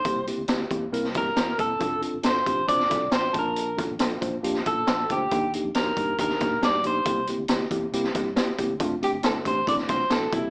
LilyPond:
<<
  \new Staff \with { instrumentName = "Clean electric guitar" } { \time 4/4 \key f \major \tempo 4 = 137 c''8 r2 bes'4 a'8~ | a'8 r8 c''4 d''4 c''8 bes'8~ | bes'8 r2 a'4 g'8~ | g'8 r8 bes'4 bes'4 d''8 c''8~ |
c''8 r2. r8 | r8 g'8 a'8 c''8 d''8 c''8 a'8 e'8 | }
  \new Staff \with { instrumentName = "Tine electric piano" } { \time 4/4 \key f \major <bes c' e' g'>8 <bes c' e' g'>8 <bes c' e' g'>8 <bes c' e' g'>8 <bes c' e' bes'>8 <bes c' e' g'>8 <bes c' e' bes'>8 <bes c' e' a'>8 | <c' d' f' a'>8 <c' d' f' a'>8 <c' d' f' a'>8 <c' d' f' g'>8 <c' d' f' c''>8 <c' d' f' a'>8 <c' d' f' c''>8 <bes des' d' f' a''>8~ | <bes des' d' f' a''>8 <bes d' f' a'>8 <bes d' f' a'>8 <bes d' f' c''>8 <bes d' f' g'>8 <bes d' f' a'>8 <bes d' f' a'>8 <bes d' f' c''>8 | <bes d' ees' g'>8 <bes d' ees' g'>8 <bes d' ees' g'>8 <bes d' ees' g'>8 <bes d' ees' g'>8 <bes d' ees' g'>8 <bes d' ees' g'>8 <bes d' ees' g'>8 |
<bes c' e' g'>8 <bes c' e' g'>8 <bes c' e' g'>8 <bes c' e' g'>8 <bes c' e' g'>8 <bes c' e' g'>8 <bes c' e' g'>8 <bes c' e' g'>8 | <a c' d' f'>8 <a c' d' g'>8 <a c' d' e'>8 <a c' d' g'>8 <a c' d' e'>8 <a c' d' f'>8 <a c' d' e'>8 <bes c' e' ges' g'>8 | }
  \new Staff \with { instrumentName = "Fingered electric bass" } { \clef bass \time 4/4 \key f \major c,8. d,16 d,8 e,8 c,8 g,8 e,8 e,,8 | f,,8. g,,16 g,,8 a,,8 f,,8 c,8 a,,8 bes,,8~ | bes,,8. a,,16 bes,,8 bes,,8 f,8 bes,8 bes,,8 d,8 | ees,8. f,16 f,8 g,8 ees,8 bes,8 g,8 b,,8 |
c,8. d,16 d,8 e,8 c,8 g,8. r16 e,16 d,16 | f,,8. g,,16 g,,8 a,,8 f,,8 c,8 a,,8 c,8 | }
  \new DrumStaff \with { instrumentName = "Drums" } \drummode { \time 4/4 <hh bd>8 hh8 <hh sn>8 <hh bd>8 hh16 sn16 <hh bd sn>8 <hh sn>8 <hh bd>8 | <hh bd>8 hh8 <hh sn>8 <hh bd>8 <hh bd>16 sn16 <hh bd sn>8 <hh sn>8 <hh bd>8 | hh8 <hh bd>8 <hh sn>8 <hh bd>8 hh16 sn16 <hh bd>8 <hh sn>8 <hh bd>8 | <hh bd>8 hh8 <hh sn>8 <hh bd>8 <hh bd>16 sn16 <hh bd sn>8 <hh sn>8 hh8 |
<hh bd>8 hh8 <hh sn>8 <hh bd>8 hh16 sn16 <hh bd sn>8 <hh sn>8 <hh bd>8 | <hh bd>8 hh8 <hh sn>8 <hh bd>8 <hh bd>16 sn16 <hh bd sn>8 <hh sn>8 <hh bd>8 | }
>>